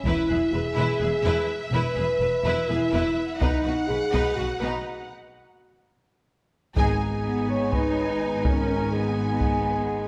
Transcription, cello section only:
\new Staff \with { instrumentName = "Cello section" } { \clef bass \time 7/8 \key b \mixolydian \tempo 4 = 125 e,8 e,8 e,8 e,8 e,8 e,8 r8 | e,8 e,8 e,8 e,8 e,8 e,8 r8 | b,8 b,8 b,8 b,8 b,8 b,8 r8 | r2. r8 |
\key gis \minor r4 b4 dis'4. | cis'4 b2~ b8 | }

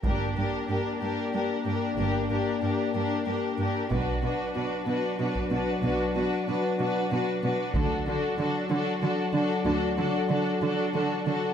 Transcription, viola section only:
\new Staff \with { instrumentName = "Viola section" } { \time 6/8 \key g \minor \tempo 4. = 62 d'8 d'8 d'8 d'8 d'8 d'8 | d'8 d'8 d'8 d'8 d'8 d'8 | d'8 d'8 d'8 d'8 d'8 d'8 | d'8 d'8 d'8 d'8 d'8 d'8 |
d'8 d'8 d'8 d'8 d'8 d'8 | d'8 d'8 d'8 d'8 d'8 d'8 | }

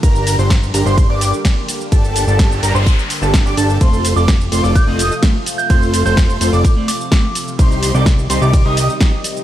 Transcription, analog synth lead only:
\new Staff \with { instrumentName = "Analog synth lead" } { \time 4/4 \key g \minor \tempo 4 = 127 bes''8. c'''16 r8 bes''16 c'''8 d'''8 r4 r16 | a''8. a''8. bes''16 c'''16 r8. a''8 d'''16 a''8 | c'''8. d'''16 r8 c'''16 d'''8 ees'''8 r4 r16 | c'''8. c'''8. c'''16 d'''16 r2 |
c'''8. d'''16 r8 c'''16 d'''8 ees'''8 r4 r16 | }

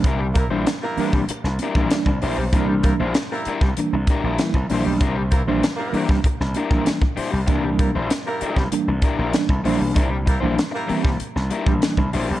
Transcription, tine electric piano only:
<<
  \new Staff \with { instrumentName = "Tine electric piano" } { \time 4/4 \key c \mixolydian \tempo 4 = 97 r2. d''8 c''8 | r1 | r1 | r1 |
r1 | }
  \new Staff \with { instrumentName = "Tine electric piano" } { \time 4/4 \key c \mixolydian r8. <e g bes d'>16 r8 <e g bes d'>8 r8 <bes c'>16 <e g bes d'>8 r8. | <e g bes d'>8. r4 r16 <e g bes d'>16 r8 <bes d'>16 <e g bes e'>16 r16 <e g bes d'>8 | r8. <e g bes d'>16 r8 <e g bes d'>8 r8 <bes d'>16 <e g bes d'>8 r8. | <e g bes d'>8. r4 r16 <e g bes d'>16 r8 <bes d'>16 <e g bes d'>16 r16 <e g bes d'>8 |
r8. <e g bes d'>16 r8 <e g bes c'>8 r8 <bes d'>16 <e g bes d'>8 r8. | }
>>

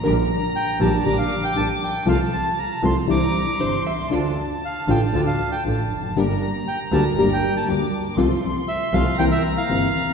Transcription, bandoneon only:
\new Staff \with { instrumentName = "Bandoneon" } { \time 4/4 \key g \dorian \tempo 4 = 118 r4 g''8 a''8 bes''16 f''8 g''16 a''8 g''8 | f''8 a''8 bes''8 c'''8 d'''4. r8 | r4 f''8 g''8 a''16 f''8 g''8 r8. | r4 g''8 a''8 bes''16 g''8 a''8 r8. |
r4 e''8 f''8 g''16 e''8 f''4~ f''16 | }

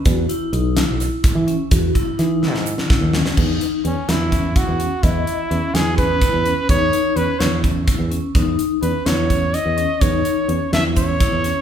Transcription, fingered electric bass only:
\new Staff \with { instrumentName = "Fingered electric bass" } { \clef bass \time 7/8 \key cis \minor \tempo 4 = 126 e,8 r8 b,,8. b,,8 r8 e8 r16 | e,8 r8 e8. gis,8 r8 dis,8 r16 | e,8 r8 e,16 r16 e,4~ e,16 e,8 r16 | e,8 r8 e,16 r16 e,4~ e,16 e,8 r16 |
e,8 r8 e,16 r16 e,4~ e,16 e,8 r16 | e,8 r8 e,16 r16 e,4~ e,16 e,8 r16 | e,8 r8 e,16 r16 e,4~ e,16 e,8 r16 | }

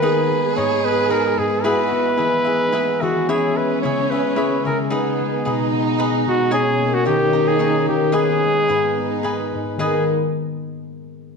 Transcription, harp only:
\new Staff \with { instrumentName = "Harp" } { \clef bass \time 3/4 \key gis \minor \tempo 4 = 111 b8 gis8 gis,8 b8 gis8 gis,8 | e'8 b8 e8 e'8 b8 e8 | cis'8 gis8 cis8 cis'8 gis8 cis8 | b8 gis8 b,8 b8 gis8 b,8 |
cis'8 ais8 dis8 cis'8 ais8 dis8 | b8 gis8 gis,8 b8 gis8 gis,8 | <dis gis b dis'>8 r2 r8 | }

